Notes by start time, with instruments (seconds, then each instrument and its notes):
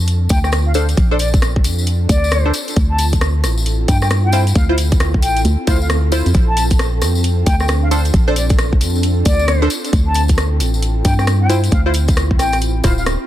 Already playing: fm bass F2, ambient pad C4 D4 F4 A4
0.07 closed hi-hat, tambourine
0.29 fm bass D2, flute G5, kick, open hi-hat, tambourine
0.44 flute G5, cross-stick, tambourine
0.52 cross-stick, closed hi-hat, tambourine
0.66 flute F5
0.74 synth stab D4 A4 C5, flute F5, open hi-hat, tambourine
0.89 closed hi-hat, tambourine
0.97 fm bass A#1, kick, closed hi-hat, tambourine
1.11 synth stab D4 A4 C5, flute D5
1.19 flute D5, open hi-hat, tambourine
1.34 kick, closed hi-hat, tambourine
1.42 cross-stick, closed hi-hat, tambourine
1.56 kick
1.64 fm bass F2, open hi-hat, tambourine
1.78 tambourine
1.87 closed hi-hat, tambourine
2.09 fm bass D2, flute D5, kick, open hi-hat, tambourine
2.24 tambourine
2.31 cross-stick, closed hi-hat, tambourine
2.46 synth stab D4 A4 C5
2.54 ambient pad E4, open hi-hat, tambourine
2.68 closed hi-hat, tambourine
2.76 fm bass D2, kick, closed hi-hat
2.90 flute A5
2.98 open hi-hat, tambourine
3.13 kick, closed hi-hat, tambourine
3.21 cross-stick, closed hi-hat, tambourine
3.44 fm bass A1, cross-stick, open hi-hat, tambourine
3.58 tambourine
3.66 closed hi-hat, tambourine
3.88 fm bass G2, flute G5, kick, open hi-hat, tambourine
4.02 flute G5, cross-stick, tambourine
4.10 cross-stick, closed hi-hat, tambourine
4.25 flute G5
4.32 synth stab E4 F4 C5, open hi-hat, tambourine
4.47 closed hi-hat, tambourine
4.55 fm bass D2, flute F5, kick, closed hi-hat
4.69 synth stab E4 F4 C5, flute F5
4.78 open hi-hat, tambourine
4.92 kick, closed hi-hat, tambourine
5.00 cross-stick, closed hi-hat, tambourine
5.14 kick
5.22 fm bass A1, flute G5, open hi-hat, tambourine
5.36 closed hi-hat, tambourine
5.45 fm bass D2, closed hi-hat, tambourine
5.67 fm bass D2, synth stab E4 F4 C5, flute F5, kick, open hi-hat, tambourine
5.81 flute F5, tambourine
5.90 cross-stick, closed hi-hat, tambourine
6.12 synth stab E4 F4 C5, open hi-hat, tambourine
6.26 fm bass F2, closed hi-hat, tambourine
6.34 fm bass A#1, ambient pad D4, kick, closed hi-hat, tambourine
6.48 flute A5
6.57 open hi-hat, tambourine
6.70 kick, closed hi-hat, tambourine
6.79 cross-stick, closed hi-hat, tambourine
7.01 fm bass F2, cross-stick, open hi-hat, tambourine
7.15 tambourine
7.24 closed hi-hat, tambourine
7.46 fm bass D2, flute G5, kick, open hi-hat, tambourine
7.60 flute G5, cross-stick, tambourine
7.68 cross-stick, closed hi-hat, tambourine
7.83 flute F5
7.91 synth stab D4 A4 C5, flute F5, open hi-hat, tambourine
8.05 closed hi-hat, tambourine
8.14 fm bass A#1, kick, closed hi-hat, tambourine
8.28 synth stab D4 A4 C5, flute D5
8.36 flute D5, open hi-hat, tambourine
8.49 kick, closed hi-hat, tambourine
8.59 cross-stick, closed hi-hat, tambourine
8.73 kick
8.81 fm bass F2, open hi-hat, tambourine
8.95 tambourine
9.03 closed hi-hat, tambourine
9.25 fm bass D2, flute D5, kick, open hi-hat, tambourine
9.39 tambourine
9.48 cross-stick, closed hi-hat, tambourine
9.62 synth stab D4 A4 C5
9.70 ambient pad E4, open hi-hat, tambourine
9.85 closed hi-hat, tambourine
9.93 fm bass D2, kick, closed hi-hat, tambourine
10.07 flute A5
10.14 open hi-hat, tambourine
10.28 kick, closed hi-hat, tambourine
10.38 cross-stick, closed hi-hat, tambourine
10.60 fm bass A1, open hi-hat, tambourine
10.74 tambourine
10.82 closed hi-hat, tambourine
11.05 fm bass G2, flute G5, kick, open hi-hat, tambourine
11.19 flute G5, cross-stick, tambourine
11.27 cross-stick, closed hi-hat, tambourine
11.41 flute G5
11.50 synth stab E4 F4 C5, ambient pad G4, open hi-hat, tambourine
11.64 closed hi-hat, tambourine
11.71 fm bass D2, flute F5, kick, closed hi-hat, tambourine
11.86 synth stab E4 F4 C5, flute F5
11.94 open hi-hat, tambourine
12.08 kick, closed hi-hat, tambourine
12.17 cross-stick, closed hi-hat, tambourine
12.31 kick
12.39 fm bass A1, flute G5, cross-stick, open hi-hat, tambourine
12.52 cross-stick, closed hi-hat, tambourine
12.61 closed hi-hat, tambourine
12.84 fm bass D1, synth stab E4 F4 C5, flute F5, kick, cross-stick, open hi-hat, tambourine
12.98 flute F5, tambourine
13.06 cross-stick, closed hi-hat, tambourine